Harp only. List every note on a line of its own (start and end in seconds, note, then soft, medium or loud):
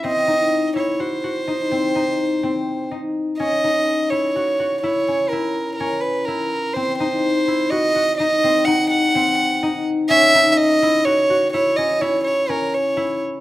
0.00 1.71 C4 medium
0.00 0.33 E4 medium
0.00 0.31 F#4 medium
0.27 0.81 D#4 medium
0.75 1.53 E4 medium
1.00 1.23 F#4 medium
1.24 3.67 F#4 medium
1.47 1.95 D#4 medium
1.71 2.43 C4 medium
1.95 2.91 D#4 medium
2.43 3.46 C4 medium
2.91 3.63 D#4 medium
3.40 5.08 C#4 medium
3.64 4.17 D#4 medium
4.11 4.83 E4 medium
4.36 4.59 F#4 medium
4.60 7.03 F#4 medium
4.83 5.32 E4 medium
5.08 5.80 C#4 medium
5.32 6.27 E4 medium
5.80 6.82 C#4 medium
6.28 7.06 E4 medium
6.76 8.43 C4 medium
7.00 7.53 D#4 medium
7.47 8.26 E4 medium
7.71 7.95 F#4 medium
7.95 10.39 F#4 medium
8.20 8.67 D#4 medium
8.44 9.15 C4 medium
8.67 9.62 D#4 medium
9.15 10.16 C4 medium
9.63 10.34 D#4 medium
10.10 11.77 C#4 medium
10.34 10.88 D#4 medium
10.82 11.53 E4 medium
11.06 11.30 F#4 medium
11.30 13.40 F#4 medium
11.54 12.01 E4 medium
11.78 12.49 C#4 medium
12.01 12.96 E4 medium
12.49 13.40 C#4 medium
12.97 13.40 E4 medium